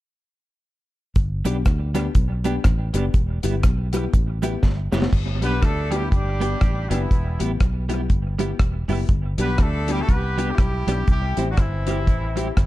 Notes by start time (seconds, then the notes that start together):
1.16 G1, kick, closed hi-hat, cabasa
1.45 B1 G3 B3 D4 G4, closed hi-hat, cabasa
1.65 D2, muted clean electric guitar stroke, kick, cross-stick, closed hi-hat, cabasa
1.94 G3 B3 D4 G4, closed hi-hat, cabasa
2.15 B1, kick, closed hi-hat, cabasa
2.44 G3 B3 D4 G4, closed hi-hat, cabasa
2.64 A1, kick, cross-stick, closed hi-hat, cabasa
2.93 F#1 G3 B3 D4 G4, closed hi-hat, cabasa
3.14 E1, kick, closed hi-hat, cabasa
3.43 G1 G3 B3 E4 G4, closed hi-hat, cabasa
3.63 B1, kick, cross-stick, closed hi-hat, cabasa
3.92 G3 B3 E4 G4, closed hi-hat, cabasa
4.13 A1, muted clean electric guitar stroke, kick, closed hi-hat, cabasa
4.42 G3 B3 E4 G4, closed hi-hat, cabasa
4.63 G1, kick, snare, cabasa
4.92 F#1 G3 B3 E4 G4, snare, cabasa
5.02 snare
5.13 G1, kick, crash
5.42 B1 G3 B3 D4 G4 B4, closed hi-hat
5.62 D2 A3 D4 A4, kick, cross-stick, closed hi-hat
5.91 G3 B3 D4 E4 G4, closed hi-hat
6.11 G1 G3 D4 G4, kick, closed hi-hat
6.40 G3 B3 D4 G4, closed hi-hat
6.61 A1, kick, cross-stick, closed hi-hat
6.90 F#1 E3 G3 B3 D4 E4 G4, closed hi-hat
7.11 E1, kick, closed hi-hat
7.39 A1 G3 B3 E4 G4, closed hi-hat
7.60 B1, kick, cross-stick, closed hi-hat
7.89 G3 B3 E4 G4, closed hi-hat
8.09 G1, muted clean electric guitar stroke, kick, closed hi-hat
8.38 G3 B3 E4 G4, closed hi-hat
8.59 E1, kick, cross-stick, closed hi-hat
8.88 F#1 G3 B3 E4 G4, open hi-hat
9.09 G1, kick, closed hi-hat
9.38 B1 G3 B3 D4 G4 B4, closed hi-hat
9.58 D2 A3 D4 A4, kick, cross-stick, closed hi-hat
9.88 G3 B3 D4 E4 G4, closed hi-hat
10.01 A3 F#4 A4
10.09 C2 B3 G4 B4, kick, closed hi-hat
10.37 G3 B3 D4 G4, closed hi-hat
10.51 G3 E4 G4
10.58 B1, kick, cross-stick, closed hi-hat
10.87 B1 G3 B3 D4 G4, closed hi-hat
11.08 C2 G3 E4 G4, kick, closed hi-hat
11.37 A1 G3 C4 E4 G4, closed hi-hat
11.49 F#3 D4 F#4
11.57 G1 E3 C4 E4, kick, cross-stick, closed hi-hat
11.86 G3 C4 E4 G4, closed hi-hat
12.07 A1, muted clean electric guitar stroke, kick, closed hi-hat
12.36 G3 C4 E4 G4, closed hi-hat
12.57 G1, kick, cross-stick, closed hi-hat